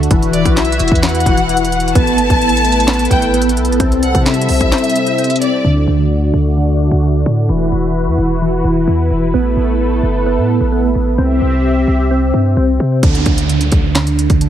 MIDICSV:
0, 0, Header, 1, 7, 480
1, 0, Start_track
1, 0, Tempo, 461538
1, 111, Time_signature, 4, 2, 24, 8
1, 15070, End_track
2, 0, Start_track
2, 0, Title_t, "Violin section"
2, 0, Program_c, 0, 48
2, 351, Note_on_c, 0, 74, 82
2, 580, Note_off_c, 0, 74, 0
2, 593, Note_on_c, 0, 76, 83
2, 1044, Note_off_c, 0, 76, 0
2, 1072, Note_on_c, 0, 78, 88
2, 1991, Note_off_c, 0, 78, 0
2, 2031, Note_on_c, 0, 81, 120
2, 3190, Note_off_c, 0, 81, 0
2, 3237, Note_on_c, 0, 79, 82
2, 3463, Note_off_c, 0, 79, 0
2, 4195, Note_on_c, 0, 78, 86
2, 4421, Note_off_c, 0, 78, 0
2, 4432, Note_on_c, 0, 76, 96
2, 5590, Note_off_c, 0, 76, 0
2, 5632, Note_on_c, 0, 74, 80
2, 5860, Note_off_c, 0, 74, 0
2, 15070, End_track
3, 0, Start_track
3, 0, Title_t, "Analog synth pad"
3, 0, Program_c, 1, 89
3, 0, Note_on_c, 1, 66, 74
3, 111, Note_on_c, 1, 71, 91
3, 112, Note_on_c, 1, 52, 84
3, 112, Note_on_c, 1, 64, 75
3, 1994, Note_off_c, 1, 66, 0
3, 2012, Note_off_c, 1, 71, 0
3, 2013, Note_off_c, 1, 52, 0
3, 2013, Note_off_c, 1, 64, 0
3, 2029, Note_on_c, 1, 57, 82
3, 2030, Note_on_c, 1, 64, 76
3, 2030, Note_on_c, 1, 69, 88
3, 2030, Note_on_c, 1, 71, 75
3, 3931, Note_off_c, 1, 57, 0
3, 3931, Note_off_c, 1, 64, 0
3, 3931, Note_off_c, 1, 71, 0
3, 3953, Note_on_c, 1, 48, 82
3, 3953, Note_on_c, 1, 55, 74
3, 3953, Note_on_c, 1, 64, 73
3, 5832, Note_off_c, 1, 69, 0
3, 5853, Note_off_c, 1, 48, 0
3, 5853, Note_off_c, 1, 55, 0
3, 5853, Note_off_c, 1, 64, 0
3, 5871, Note_on_c, 1, 66, 72
3, 5872, Note_on_c, 1, 50, 77
3, 5872, Note_on_c, 1, 57, 72
3, 5872, Note_on_c, 1, 74, 87
3, 7772, Note_off_c, 1, 66, 0
3, 7772, Note_off_c, 1, 74, 0
3, 7773, Note_off_c, 1, 50, 0
3, 7773, Note_off_c, 1, 57, 0
3, 7791, Note_on_c, 1, 52, 79
3, 7791, Note_on_c, 1, 71, 88
3, 7792, Note_on_c, 1, 64, 72
3, 7792, Note_on_c, 1, 66, 73
3, 9692, Note_off_c, 1, 52, 0
3, 9693, Note_off_c, 1, 66, 0
3, 9712, Note_on_c, 1, 57, 80
3, 9712, Note_on_c, 1, 69, 89
3, 11593, Note_off_c, 1, 64, 0
3, 11593, Note_off_c, 1, 71, 0
3, 11612, Note_off_c, 1, 57, 0
3, 11613, Note_off_c, 1, 69, 0
3, 11631, Note_on_c, 1, 48, 80
3, 11631, Note_on_c, 1, 60, 73
3, 11632, Note_on_c, 1, 67, 74
3, 11632, Note_on_c, 1, 76, 90
3, 13532, Note_off_c, 1, 48, 0
3, 13532, Note_off_c, 1, 60, 0
3, 13532, Note_off_c, 1, 76, 0
3, 13533, Note_off_c, 1, 67, 0
3, 15070, End_track
4, 0, Start_track
4, 0, Title_t, "Synth keys"
4, 0, Program_c, 2, 88
4, 0, Note_on_c, 2, 50, 79
4, 112, Note_off_c, 2, 50, 0
4, 115, Note_on_c, 2, 52, 101
4, 1061, Note_off_c, 2, 52, 0
4, 1074, Note_on_c, 2, 52, 97
4, 1541, Note_off_c, 2, 52, 0
4, 1553, Note_on_c, 2, 52, 82
4, 2032, Note_off_c, 2, 52, 0
4, 2032, Note_on_c, 2, 59, 93
4, 2982, Note_off_c, 2, 59, 0
4, 2994, Note_on_c, 2, 59, 85
4, 3459, Note_off_c, 2, 59, 0
4, 3471, Note_on_c, 2, 59, 83
4, 3950, Note_on_c, 2, 60, 101
4, 3952, Note_off_c, 2, 59, 0
4, 4900, Note_off_c, 2, 60, 0
4, 4912, Note_on_c, 2, 60, 91
4, 5380, Note_off_c, 2, 60, 0
4, 5393, Note_on_c, 2, 60, 75
4, 5872, Note_off_c, 2, 60, 0
4, 5875, Note_on_c, 2, 50, 99
4, 6819, Note_off_c, 2, 50, 0
4, 6831, Note_on_c, 2, 50, 84
4, 7299, Note_off_c, 2, 50, 0
4, 7312, Note_on_c, 2, 50, 74
4, 7792, Note_off_c, 2, 50, 0
4, 7794, Note_on_c, 2, 52, 92
4, 8741, Note_off_c, 2, 52, 0
4, 8753, Note_on_c, 2, 52, 90
4, 9220, Note_off_c, 2, 52, 0
4, 9232, Note_on_c, 2, 52, 78
4, 9711, Note_on_c, 2, 59, 86
4, 9712, Note_off_c, 2, 52, 0
4, 10662, Note_off_c, 2, 59, 0
4, 10674, Note_on_c, 2, 59, 80
4, 11139, Note_off_c, 2, 59, 0
4, 11151, Note_on_c, 2, 59, 82
4, 11629, Note_on_c, 2, 60, 91
4, 11631, Note_off_c, 2, 59, 0
4, 12580, Note_off_c, 2, 60, 0
4, 12593, Note_on_c, 2, 60, 86
4, 13060, Note_off_c, 2, 60, 0
4, 13072, Note_on_c, 2, 60, 75
4, 13552, Note_off_c, 2, 60, 0
4, 13555, Note_on_c, 2, 50, 100
4, 14498, Note_off_c, 2, 50, 0
4, 14511, Note_on_c, 2, 50, 88
4, 14979, Note_off_c, 2, 50, 0
4, 14992, Note_on_c, 2, 50, 79
4, 15070, Note_off_c, 2, 50, 0
4, 15070, End_track
5, 0, Start_track
5, 0, Title_t, "808-style bass"
5, 0, Program_c, 3, 38
5, 111, Note_on_c, 3, 28, 114
5, 457, Note_off_c, 3, 28, 0
5, 473, Note_on_c, 3, 35, 106
5, 818, Note_off_c, 3, 35, 0
5, 832, Note_on_c, 3, 28, 104
5, 947, Note_off_c, 3, 28, 0
5, 952, Note_on_c, 3, 40, 105
5, 1297, Note_off_c, 3, 40, 0
5, 1311, Note_on_c, 3, 28, 102
5, 2003, Note_off_c, 3, 28, 0
5, 2033, Note_on_c, 3, 33, 110
5, 2272, Note_on_c, 3, 31, 100
5, 2287, Note_off_c, 3, 33, 0
5, 2386, Note_off_c, 3, 31, 0
5, 2393, Note_on_c, 3, 33, 104
5, 3199, Note_off_c, 3, 33, 0
5, 3232, Note_on_c, 3, 33, 106
5, 3712, Note_on_c, 3, 35, 103
5, 3728, Note_off_c, 3, 33, 0
5, 3832, Note_on_c, 3, 33, 98
5, 3847, Note_off_c, 3, 35, 0
5, 3946, Note_off_c, 3, 33, 0
5, 3952, Note_on_c, 3, 36, 111
5, 4298, Note_off_c, 3, 36, 0
5, 4313, Note_on_c, 3, 48, 108
5, 4658, Note_off_c, 3, 48, 0
5, 4671, Note_on_c, 3, 36, 105
5, 4787, Note_off_c, 3, 36, 0
5, 4792, Note_on_c, 3, 36, 103
5, 4912, Note_off_c, 3, 36, 0
5, 5872, Note_on_c, 3, 38, 112
5, 6102, Note_off_c, 3, 38, 0
5, 6111, Note_on_c, 3, 38, 99
5, 6572, Note_off_c, 3, 38, 0
5, 6590, Note_on_c, 3, 38, 99
5, 7167, Note_off_c, 3, 38, 0
5, 7192, Note_on_c, 3, 38, 103
5, 7537, Note_off_c, 3, 38, 0
5, 7552, Note_on_c, 3, 45, 106
5, 7782, Note_off_c, 3, 45, 0
5, 7792, Note_on_c, 3, 28, 108
5, 8022, Note_off_c, 3, 28, 0
5, 8032, Note_on_c, 3, 28, 103
5, 8391, Note_on_c, 3, 40, 93
5, 8407, Note_off_c, 3, 28, 0
5, 8506, Note_off_c, 3, 40, 0
5, 8511, Note_on_c, 3, 28, 101
5, 8972, Note_off_c, 3, 28, 0
5, 8991, Note_on_c, 3, 28, 101
5, 9222, Note_off_c, 3, 28, 0
5, 9231, Note_on_c, 3, 40, 108
5, 9462, Note_off_c, 3, 40, 0
5, 9471, Note_on_c, 3, 28, 101
5, 9702, Note_off_c, 3, 28, 0
5, 9711, Note_on_c, 3, 33, 107
5, 9942, Note_off_c, 3, 33, 0
5, 9951, Note_on_c, 3, 33, 103
5, 10412, Note_off_c, 3, 33, 0
5, 10432, Note_on_c, 3, 31, 103
5, 10792, Note_on_c, 3, 45, 98
5, 10808, Note_off_c, 3, 31, 0
5, 11020, Note_off_c, 3, 45, 0
5, 11032, Note_on_c, 3, 33, 106
5, 11378, Note_off_c, 3, 33, 0
5, 11392, Note_on_c, 3, 33, 99
5, 11622, Note_off_c, 3, 33, 0
5, 11632, Note_on_c, 3, 36, 110
5, 11862, Note_off_c, 3, 36, 0
5, 11872, Note_on_c, 3, 36, 97
5, 12333, Note_off_c, 3, 36, 0
5, 12353, Note_on_c, 3, 36, 102
5, 12813, Note_off_c, 3, 36, 0
5, 12832, Note_on_c, 3, 43, 100
5, 13062, Note_off_c, 3, 43, 0
5, 13072, Note_on_c, 3, 36, 108
5, 13302, Note_off_c, 3, 36, 0
5, 13313, Note_on_c, 3, 48, 101
5, 13543, Note_off_c, 3, 48, 0
5, 13552, Note_on_c, 3, 38, 112
5, 13782, Note_off_c, 3, 38, 0
5, 13792, Note_on_c, 3, 38, 105
5, 14253, Note_off_c, 3, 38, 0
5, 14272, Note_on_c, 3, 38, 104
5, 14848, Note_off_c, 3, 38, 0
5, 14871, Note_on_c, 3, 38, 105
5, 15070, Note_off_c, 3, 38, 0
5, 15070, End_track
6, 0, Start_track
6, 0, Title_t, "Downlifter"
6, 0, Program_c, 4, 103
6, 13552, Note_on_c, 4, 60, 89
6, 15070, Note_off_c, 4, 60, 0
6, 15070, End_track
7, 0, Start_track
7, 0, Title_t, "Drums"
7, 32, Note_on_c, 9, 42, 41
7, 111, Note_off_c, 9, 42, 0
7, 111, Note_on_c, 9, 42, 87
7, 112, Note_on_c, 9, 36, 124
7, 215, Note_off_c, 9, 42, 0
7, 216, Note_off_c, 9, 36, 0
7, 234, Note_on_c, 9, 42, 48
7, 338, Note_off_c, 9, 42, 0
7, 347, Note_on_c, 9, 42, 72
7, 451, Note_off_c, 9, 42, 0
7, 473, Note_on_c, 9, 36, 102
7, 473, Note_on_c, 9, 42, 60
7, 577, Note_off_c, 9, 36, 0
7, 577, Note_off_c, 9, 42, 0
7, 592, Note_on_c, 9, 38, 102
7, 592, Note_on_c, 9, 42, 50
7, 596, Note_on_c, 9, 39, 87
7, 672, Note_off_c, 9, 42, 0
7, 672, Note_on_c, 9, 42, 59
7, 696, Note_off_c, 9, 38, 0
7, 700, Note_off_c, 9, 39, 0
7, 753, Note_off_c, 9, 42, 0
7, 753, Note_on_c, 9, 42, 64
7, 826, Note_on_c, 9, 46, 84
7, 832, Note_off_c, 9, 42, 0
7, 832, Note_on_c, 9, 42, 71
7, 912, Note_off_c, 9, 42, 0
7, 912, Note_on_c, 9, 42, 77
7, 930, Note_off_c, 9, 46, 0
7, 952, Note_on_c, 9, 36, 88
7, 992, Note_off_c, 9, 42, 0
7, 992, Note_on_c, 9, 42, 82
7, 1056, Note_off_c, 9, 36, 0
7, 1072, Note_off_c, 9, 42, 0
7, 1072, Note_on_c, 9, 38, 116
7, 1072, Note_on_c, 9, 42, 63
7, 1076, Note_on_c, 9, 39, 92
7, 1132, Note_off_c, 9, 42, 0
7, 1132, Note_on_c, 9, 42, 61
7, 1176, Note_off_c, 9, 38, 0
7, 1180, Note_off_c, 9, 39, 0
7, 1192, Note_off_c, 9, 42, 0
7, 1192, Note_on_c, 9, 42, 62
7, 1252, Note_off_c, 9, 42, 0
7, 1252, Note_on_c, 9, 42, 62
7, 1311, Note_on_c, 9, 36, 96
7, 1315, Note_off_c, 9, 42, 0
7, 1315, Note_on_c, 9, 42, 85
7, 1415, Note_off_c, 9, 36, 0
7, 1419, Note_off_c, 9, 42, 0
7, 1429, Note_on_c, 9, 42, 60
7, 1533, Note_off_c, 9, 42, 0
7, 1552, Note_on_c, 9, 42, 67
7, 1632, Note_off_c, 9, 42, 0
7, 1632, Note_on_c, 9, 42, 61
7, 1712, Note_off_c, 9, 42, 0
7, 1712, Note_on_c, 9, 42, 61
7, 1792, Note_off_c, 9, 42, 0
7, 1792, Note_on_c, 9, 42, 52
7, 1872, Note_off_c, 9, 42, 0
7, 1872, Note_on_c, 9, 42, 48
7, 1953, Note_off_c, 9, 42, 0
7, 1953, Note_on_c, 9, 42, 42
7, 2032, Note_off_c, 9, 42, 0
7, 2032, Note_on_c, 9, 36, 123
7, 2032, Note_on_c, 9, 42, 87
7, 2136, Note_off_c, 9, 36, 0
7, 2136, Note_off_c, 9, 42, 0
7, 2156, Note_on_c, 9, 42, 47
7, 2260, Note_off_c, 9, 42, 0
7, 2268, Note_on_c, 9, 42, 73
7, 2372, Note_off_c, 9, 42, 0
7, 2393, Note_on_c, 9, 36, 101
7, 2393, Note_on_c, 9, 42, 61
7, 2497, Note_off_c, 9, 36, 0
7, 2497, Note_off_c, 9, 42, 0
7, 2512, Note_on_c, 9, 42, 51
7, 2592, Note_off_c, 9, 42, 0
7, 2592, Note_on_c, 9, 42, 59
7, 2672, Note_off_c, 9, 42, 0
7, 2672, Note_on_c, 9, 42, 65
7, 2752, Note_off_c, 9, 42, 0
7, 2752, Note_on_c, 9, 42, 69
7, 2832, Note_off_c, 9, 42, 0
7, 2832, Note_on_c, 9, 42, 78
7, 2912, Note_off_c, 9, 42, 0
7, 2912, Note_on_c, 9, 42, 86
7, 2991, Note_on_c, 9, 38, 115
7, 2992, Note_off_c, 9, 42, 0
7, 2992, Note_on_c, 9, 42, 61
7, 2995, Note_on_c, 9, 39, 89
7, 3052, Note_off_c, 9, 42, 0
7, 3052, Note_on_c, 9, 42, 60
7, 3095, Note_off_c, 9, 38, 0
7, 3099, Note_off_c, 9, 39, 0
7, 3112, Note_off_c, 9, 42, 0
7, 3112, Note_on_c, 9, 42, 62
7, 3173, Note_off_c, 9, 42, 0
7, 3173, Note_on_c, 9, 42, 63
7, 3232, Note_on_c, 9, 36, 93
7, 3235, Note_off_c, 9, 42, 0
7, 3235, Note_on_c, 9, 42, 82
7, 3336, Note_off_c, 9, 36, 0
7, 3339, Note_off_c, 9, 42, 0
7, 3350, Note_on_c, 9, 42, 59
7, 3454, Note_off_c, 9, 42, 0
7, 3473, Note_on_c, 9, 42, 71
7, 3553, Note_off_c, 9, 42, 0
7, 3553, Note_on_c, 9, 42, 61
7, 3633, Note_off_c, 9, 42, 0
7, 3633, Note_on_c, 9, 42, 60
7, 3713, Note_off_c, 9, 42, 0
7, 3713, Note_on_c, 9, 42, 54
7, 3794, Note_off_c, 9, 42, 0
7, 3794, Note_on_c, 9, 42, 47
7, 3873, Note_off_c, 9, 42, 0
7, 3873, Note_on_c, 9, 42, 41
7, 3952, Note_off_c, 9, 42, 0
7, 3952, Note_on_c, 9, 36, 122
7, 3952, Note_on_c, 9, 42, 85
7, 4056, Note_off_c, 9, 36, 0
7, 4056, Note_off_c, 9, 42, 0
7, 4075, Note_on_c, 9, 42, 45
7, 4179, Note_off_c, 9, 42, 0
7, 4188, Note_on_c, 9, 42, 73
7, 4292, Note_off_c, 9, 42, 0
7, 4313, Note_on_c, 9, 36, 101
7, 4314, Note_on_c, 9, 42, 59
7, 4417, Note_off_c, 9, 36, 0
7, 4418, Note_off_c, 9, 42, 0
7, 4432, Note_on_c, 9, 38, 103
7, 4432, Note_on_c, 9, 42, 51
7, 4436, Note_on_c, 9, 39, 83
7, 4512, Note_off_c, 9, 42, 0
7, 4512, Note_on_c, 9, 42, 66
7, 4536, Note_off_c, 9, 38, 0
7, 4540, Note_off_c, 9, 39, 0
7, 4592, Note_off_c, 9, 42, 0
7, 4592, Note_on_c, 9, 42, 85
7, 4666, Note_on_c, 9, 46, 83
7, 4696, Note_off_c, 9, 42, 0
7, 4770, Note_off_c, 9, 46, 0
7, 4790, Note_on_c, 9, 42, 56
7, 4792, Note_on_c, 9, 36, 94
7, 4894, Note_off_c, 9, 42, 0
7, 4896, Note_off_c, 9, 36, 0
7, 4911, Note_on_c, 9, 38, 115
7, 4912, Note_on_c, 9, 42, 63
7, 4915, Note_on_c, 9, 39, 90
7, 4972, Note_off_c, 9, 42, 0
7, 4972, Note_on_c, 9, 42, 61
7, 5015, Note_off_c, 9, 38, 0
7, 5019, Note_off_c, 9, 39, 0
7, 5032, Note_off_c, 9, 42, 0
7, 5032, Note_on_c, 9, 42, 61
7, 5091, Note_off_c, 9, 42, 0
7, 5091, Note_on_c, 9, 42, 62
7, 5154, Note_off_c, 9, 42, 0
7, 5154, Note_on_c, 9, 42, 83
7, 5258, Note_off_c, 9, 42, 0
7, 5268, Note_on_c, 9, 42, 61
7, 5372, Note_off_c, 9, 42, 0
7, 5391, Note_on_c, 9, 42, 43
7, 5451, Note_off_c, 9, 42, 0
7, 5451, Note_on_c, 9, 42, 49
7, 5512, Note_off_c, 9, 42, 0
7, 5512, Note_on_c, 9, 42, 62
7, 5571, Note_off_c, 9, 42, 0
7, 5571, Note_on_c, 9, 42, 73
7, 5633, Note_off_c, 9, 42, 0
7, 5633, Note_on_c, 9, 42, 78
7, 5737, Note_off_c, 9, 42, 0
7, 13551, Note_on_c, 9, 42, 83
7, 13552, Note_on_c, 9, 36, 115
7, 13655, Note_off_c, 9, 42, 0
7, 13656, Note_off_c, 9, 36, 0
7, 13675, Note_on_c, 9, 42, 46
7, 13779, Note_off_c, 9, 42, 0
7, 13788, Note_on_c, 9, 42, 50
7, 13792, Note_on_c, 9, 36, 92
7, 13892, Note_off_c, 9, 42, 0
7, 13896, Note_off_c, 9, 36, 0
7, 13913, Note_on_c, 9, 42, 83
7, 14017, Note_off_c, 9, 42, 0
7, 14034, Note_on_c, 9, 42, 86
7, 14138, Note_off_c, 9, 42, 0
7, 14152, Note_on_c, 9, 42, 60
7, 14256, Note_off_c, 9, 42, 0
7, 14265, Note_on_c, 9, 42, 74
7, 14272, Note_on_c, 9, 36, 96
7, 14369, Note_off_c, 9, 42, 0
7, 14376, Note_off_c, 9, 36, 0
7, 14511, Note_on_c, 9, 38, 107
7, 14511, Note_on_c, 9, 42, 76
7, 14515, Note_on_c, 9, 39, 89
7, 14615, Note_off_c, 9, 38, 0
7, 14615, Note_off_c, 9, 42, 0
7, 14619, Note_off_c, 9, 39, 0
7, 14631, Note_on_c, 9, 42, 58
7, 14735, Note_off_c, 9, 42, 0
7, 14755, Note_on_c, 9, 42, 79
7, 14859, Note_off_c, 9, 42, 0
7, 14870, Note_on_c, 9, 42, 57
7, 14872, Note_on_c, 9, 36, 93
7, 14974, Note_off_c, 9, 42, 0
7, 14976, Note_off_c, 9, 36, 0
7, 14987, Note_on_c, 9, 42, 72
7, 15070, Note_off_c, 9, 42, 0
7, 15070, End_track
0, 0, End_of_file